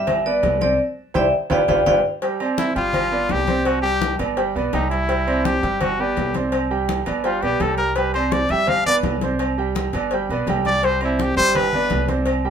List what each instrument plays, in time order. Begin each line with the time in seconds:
Already playing: upright bass G1, grand piano G3 G4 G5, vibraphone E5
0.07 cowbell, high conga, low conga, low agogo
0.26 grand piano B3 B4 D5, vibraphone D5, high conga
0.43 upright bass C2, cowbell, high conga, low timbale, low agogo
0.61 grand piano C4 C5 D5, vibraphone D5, cowbell, high conga, low agogo
1.14 upright bass C2, grand piano E4 G4 C5, vibraphone D5 E5 G5, cowbell, low conga, high timbale
1.50 upright bass G1, grand piano F4 G4 B4, vibraphone D5 F5 G5, cowbell, low conga, high timbale
1.68 upright bass G1, grand piano F4 G4 B4, vibraphone D5 F5 G5, cowbell, low conga, high timbale
1.86 upright bass G1, grand piano F4 G4 B4, vibraphone D5 F5 G5, cowbell, low conga, high timbale
2.22 grand piano G3 G4 G5, cowbell, high conga, low agogo
2.40 grand piano C4 C5 D5, high conga, low agogo
2.58 trumpet E4, cowbell, high conga, low timbale
2.75 upright bass G1, grand piano G3 G4 G5, trumpet F4, cowbell, high conga
2.93 cowbell, high conga, low conga, low agogo
3.11 grand piano B3 B4 D5, high conga
3.29 upright bass C2, trumpet G4, cowbell, high conga, low timbale, low agogo
3.47 grand piano C4 C5 D5, cowbell, high conga, low agogo
3.65 trumpet F#4, cowbell, high conga, low agogo
3.82 grand piano G3 G4 G5, trumpet G4, high conga
4.01 cowbell, high conga, low timbale, low agogo
4.19 upright bass G1, grand piano B3 B4 D5, cowbell, high conga, low agogo
4.37 grand piano G3 G4 G5, cowbell, high conga
4.55 upright bass B1, grand piano B3 B4 D5, high conga, low agogo
4.73 upright bass C2, grand piano G3 G4 G5, trumpet D#4, cowbell, high conga, low timbale, low agogo
4.90 trumpet E4, cowbell
5.08 grand piano G3 G4 G5, cowbell, high conga, low agogo
5.27 grand piano C4 C5 D5, high conga, low agogo
5.45 trumpet G4, cowbell, high conga, low timbale
5.62 upright bass G1, grand piano G3 G4 G5, cowbell, high conga
5.81 trumpet F#4, cowbell, high conga, low conga, low agogo
5.99 grand piano B3 B4 D5, trumpet G4, high conga
6.16 upright bass C2, cowbell, high conga, low timbale, low agogo
6.34 grand piano C4 C5 D5, cowbell, high conga, low agogo
6.52 cowbell, high conga, low agogo
6.71 grand piano G3 G4 G5, high conga
6.89 cowbell, high conga, low timbale, low agogo
7.06 upright bass G1, grand piano B3 B4 D5, cowbell, high conga, low agogo
7.24 grand piano G3 G4 G5, trumpet F4, cowbell, high conga
7.42 upright bass B1, grand piano B3 B4 D5, trumpet G4, high conga, low agogo
7.60 upright bass C2, grand piano G3 G4 G5, trumpet A4, cowbell, high conga, low timbale, low agogo
7.77 trumpet A#4, cowbell
7.96 grand piano G3 G4 G5, trumpet B4, cowbell, high conga, low agogo
8.14 grand piano C4 C5 D5, trumpet C5, high conga, low agogo
8.31 trumpet D5, cowbell, high conga, low timbale
8.49 upright bass G1, grand piano G3 G4 G5, trumpet E5, cowbell, high conga
8.67 trumpet F5, cowbell, high conga, low conga, low agogo
8.86 grand piano B3 B4 D5, trumpet D5, high conga, low conga
9.03 upright bass C2, cowbell, high conga, low timbale, low agogo
9.21 grand piano C4 C5 D5, cowbell, high conga, low agogo
9.39 cowbell, high conga, low agogo
9.58 grand piano G3 G4 G5, high conga
9.75 cowbell, high conga, low timbale, low agogo
9.93 upright bass G1, grand piano B3 B4 D5, cowbell, high conga, low agogo
10.11 grand piano G3 G4 G5, cowbell, high conga
10.29 upright bass B1, grand piano B3 B4 D5, high conga, low agogo
10.47 upright bass C2, grand piano G3 G4 G5, cowbell, high conga, low timbale, low agogo
10.65 trumpet D5, cowbell, high conga
10.83 grand piano G3 G4 G5, trumpet C5, cowbell, high conga, low agogo
11.01 grand piano C4 C5 D5, trumpet E4, high conga, low agogo
11.19 trumpet G4, cowbell, high conga, low timbale
11.37 upright bass G1, grand piano G3 G4 G5, trumpet C5, cowbell, high conga
11.55 trumpet B4, cowbell, high conga, low conga, low agogo
11.73 grand piano B3 B4 D5, high conga, low conga
11.90 upright bass C2, cowbell, high conga, low timbale, low agogo
12.08 grand piano C4 C5 D5, cowbell, high conga, low agogo
12.26 cowbell, high conga, low agogo
12.45 grand piano G3 G4 G5, high conga